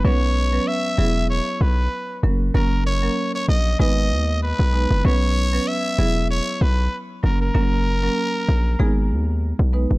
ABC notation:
X:1
M:4/4
L:1/16
Q:"Swing 16ths" 1/4=96
K:F#mix
V:1 name="Trumpet"
c4 e4 c2 B4 z2 | A2 c3 c d2 d4 B4 | c4 e4 c2 B2 z2 A A- | A8- A3 z4 z |]
V:2 name="Marimba"
[F,B,CB] z2 [F,B,CB] z2 [F,B,EG]6- [F,B,EG] z [F,A,CA]2 | [F,A,CA] z2 [F,A,CA] z4 [G,B,DB]6 [G,B,DB]2 | [F,B,CB] z2 [F,B,CB] z2 [F,B,EG]6- [F,B,EG] z [F,A,CA] z | [F,A,CA] z2 [F,A,CA] z4 [G,B,DG]6 [G,B,DB]2 |]
V:3 name="808-style bass" clef=bass
B,,,4 z2 E,,,3 z B,,,2 z2 F,,,2 | F,,,4 z2 A,,,2 G,,,2 D,,3 B,,,2 F,,, | B,,,4 z2 E,,,3 z B,,,2 z2 F,,,2 | F,,,4 z2 A,,,2 G,,,2 D,,3 B,,,2 F,,, |]